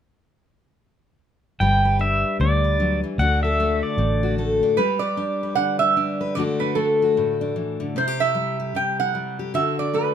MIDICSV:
0, 0, Header, 1, 5, 480
1, 0, Start_track
1, 0, Tempo, 398406
1, 1918, Time_signature, 4, 2, 24, 8
1, 12219, End_track
2, 0, Start_track
2, 0, Title_t, "Pedal steel guitar"
2, 0, Program_c, 0, 26
2, 1930, Note_on_c, 0, 79, 91
2, 2371, Note_off_c, 0, 79, 0
2, 2421, Note_on_c, 0, 76, 73
2, 2857, Note_off_c, 0, 76, 0
2, 2901, Note_on_c, 0, 74, 79
2, 3612, Note_off_c, 0, 74, 0
2, 3847, Note_on_c, 0, 78, 87
2, 4114, Note_off_c, 0, 78, 0
2, 4131, Note_on_c, 0, 76, 84
2, 4614, Note_on_c, 0, 74, 65
2, 4625, Note_off_c, 0, 76, 0
2, 5235, Note_off_c, 0, 74, 0
2, 12219, End_track
3, 0, Start_track
3, 0, Title_t, "Resonator guitar played with a steel bar"
3, 0, Program_c, 1, 25
3, 5746, Note_on_c, 1, 71, 82
3, 6016, Note_on_c, 1, 74, 79
3, 6022, Note_off_c, 1, 71, 0
3, 6655, Note_off_c, 1, 74, 0
3, 6692, Note_on_c, 1, 78, 92
3, 6971, Note_off_c, 1, 78, 0
3, 6976, Note_on_c, 1, 76, 88
3, 7647, Note_off_c, 1, 76, 0
3, 7652, Note_on_c, 1, 74, 91
3, 7734, Note_off_c, 1, 74, 0
3, 7948, Note_on_c, 1, 71, 71
3, 8134, Note_on_c, 1, 69, 64
3, 8149, Note_off_c, 1, 71, 0
3, 9058, Note_off_c, 1, 69, 0
3, 9611, Note_on_c, 1, 72, 88
3, 9875, Note_off_c, 1, 72, 0
3, 9882, Note_on_c, 1, 76, 91
3, 10558, Note_on_c, 1, 79, 86
3, 10576, Note_off_c, 1, 76, 0
3, 10834, Note_off_c, 1, 79, 0
3, 10838, Note_on_c, 1, 78, 87
3, 11499, Note_off_c, 1, 78, 0
3, 11504, Note_on_c, 1, 76, 89
3, 11791, Note_off_c, 1, 76, 0
3, 11796, Note_on_c, 1, 74, 71
3, 11979, Note_on_c, 1, 71, 73
3, 11999, Note_off_c, 1, 74, 0
3, 12219, Note_off_c, 1, 71, 0
3, 12219, End_track
4, 0, Start_track
4, 0, Title_t, "Steel-string acoustic guitar"
4, 0, Program_c, 2, 25
4, 1937, Note_on_c, 2, 55, 62
4, 1945, Note_on_c, 2, 67, 45
4, 1948, Note_on_c, 2, 71, 55
4, 2215, Note_off_c, 2, 71, 0
4, 2230, Note_on_c, 2, 71, 53
4, 2400, Note_on_c, 2, 62, 49
4, 2895, Note_on_c, 2, 50, 52
4, 3168, Note_off_c, 2, 71, 0
4, 3182, Note_on_c, 2, 71, 50
4, 3366, Note_off_c, 2, 50, 0
4, 3371, Note_on_c, 2, 54, 50
4, 3652, Note_off_c, 2, 54, 0
4, 3657, Note_on_c, 2, 52, 51
4, 3824, Note_off_c, 2, 71, 0
4, 3828, Note_off_c, 2, 67, 0
4, 3840, Note_off_c, 2, 52, 0
4, 3845, Note_on_c, 2, 50, 67
4, 3851, Note_off_c, 2, 55, 0
4, 3853, Note_off_c, 2, 62, 0
4, 3858, Note_on_c, 2, 62, 53
4, 3870, Note_on_c, 2, 66, 57
4, 3878, Note_on_c, 2, 69, 57
4, 4133, Note_off_c, 2, 69, 0
4, 4147, Note_on_c, 2, 69, 54
4, 4336, Note_on_c, 2, 57, 53
4, 4795, Note_on_c, 2, 45, 57
4, 5083, Note_off_c, 2, 66, 0
4, 5097, Note_on_c, 2, 66, 51
4, 5265, Note_off_c, 2, 57, 0
4, 5272, Note_off_c, 2, 69, 0
4, 5279, Note_on_c, 2, 57, 50
4, 5287, Note_on_c, 2, 69, 55
4, 5562, Note_off_c, 2, 62, 0
4, 5576, Note_on_c, 2, 62, 53
4, 5737, Note_off_c, 2, 57, 0
4, 5740, Note_off_c, 2, 62, 0
4, 5741, Note_off_c, 2, 66, 0
4, 5757, Note_on_c, 2, 55, 71
4, 5758, Note_off_c, 2, 45, 0
4, 5763, Note_off_c, 2, 50, 0
4, 5763, Note_off_c, 2, 69, 0
4, 5767, Note_on_c, 2, 67, 57
4, 6041, Note_off_c, 2, 67, 0
4, 6055, Note_on_c, 2, 67, 46
4, 6231, Note_on_c, 2, 62, 56
4, 6543, Note_on_c, 2, 71, 54
4, 6709, Note_on_c, 2, 50, 59
4, 6997, Note_off_c, 2, 67, 0
4, 7011, Note_on_c, 2, 67, 48
4, 7174, Note_off_c, 2, 62, 0
4, 7189, Note_on_c, 2, 62, 57
4, 7463, Note_off_c, 2, 71, 0
4, 7477, Note_on_c, 2, 71, 63
4, 7651, Note_off_c, 2, 62, 0
4, 7651, Note_off_c, 2, 71, 0
4, 7653, Note_off_c, 2, 50, 0
4, 7657, Note_off_c, 2, 67, 0
4, 7667, Note_on_c, 2, 50, 70
4, 7672, Note_off_c, 2, 55, 0
4, 7677, Note_on_c, 2, 57, 58
4, 7685, Note_on_c, 2, 62, 60
4, 7693, Note_on_c, 2, 66, 54
4, 7707, Note_on_c, 2, 69, 66
4, 7949, Note_off_c, 2, 62, 0
4, 7963, Note_on_c, 2, 62, 50
4, 8125, Note_off_c, 2, 57, 0
4, 8139, Note_on_c, 2, 57, 56
4, 8446, Note_off_c, 2, 66, 0
4, 8461, Note_on_c, 2, 66, 56
4, 8641, Note_on_c, 2, 45, 60
4, 8914, Note_off_c, 2, 62, 0
4, 8928, Note_on_c, 2, 62, 53
4, 9102, Note_off_c, 2, 50, 0
4, 9107, Note_on_c, 2, 52, 51
4, 9392, Note_off_c, 2, 52, 0
4, 9397, Note_on_c, 2, 50, 57
4, 9566, Note_off_c, 2, 57, 0
4, 9576, Note_off_c, 2, 62, 0
4, 9582, Note_off_c, 2, 66, 0
4, 9583, Note_off_c, 2, 45, 0
4, 9588, Note_on_c, 2, 48, 71
4, 9593, Note_off_c, 2, 50, 0
4, 9593, Note_on_c, 2, 64, 51
4, 9613, Note_off_c, 2, 69, 0
4, 9729, Note_off_c, 2, 64, 0
4, 9729, Note_on_c, 2, 67, 46
4, 9883, Note_on_c, 2, 64, 51
4, 10055, Note_on_c, 2, 55, 57
4, 10342, Note_off_c, 2, 67, 0
4, 10356, Note_on_c, 2, 67, 53
4, 10524, Note_off_c, 2, 48, 0
4, 10538, Note_on_c, 2, 48, 58
4, 10835, Note_off_c, 2, 64, 0
4, 10850, Note_on_c, 2, 64, 49
4, 11008, Note_off_c, 2, 55, 0
4, 11022, Note_on_c, 2, 55, 57
4, 11302, Note_off_c, 2, 67, 0
4, 11316, Note_on_c, 2, 67, 54
4, 11486, Note_off_c, 2, 48, 0
4, 11490, Note_off_c, 2, 67, 0
4, 11493, Note_on_c, 2, 50, 65
4, 11497, Note_off_c, 2, 64, 0
4, 11503, Note_on_c, 2, 66, 61
4, 11511, Note_off_c, 2, 55, 0
4, 11797, Note_on_c, 2, 62, 48
4, 11971, Note_on_c, 2, 57, 55
4, 12219, Note_off_c, 2, 50, 0
4, 12219, Note_off_c, 2, 57, 0
4, 12219, Note_off_c, 2, 62, 0
4, 12219, Note_off_c, 2, 66, 0
4, 12219, End_track
5, 0, Start_track
5, 0, Title_t, "Fingered electric bass"
5, 0, Program_c, 3, 33
5, 1931, Note_on_c, 3, 31, 68
5, 2685, Note_off_c, 3, 31, 0
5, 2888, Note_on_c, 3, 38, 72
5, 3642, Note_off_c, 3, 38, 0
5, 3833, Note_on_c, 3, 38, 71
5, 4594, Note_off_c, 3, 38, 0
5, 4788, Note_on_c, 3, 33, 70
5, 5551, Note_off_c, 3, 33, 0
5, 12219, End_track
0, 0, End_of_file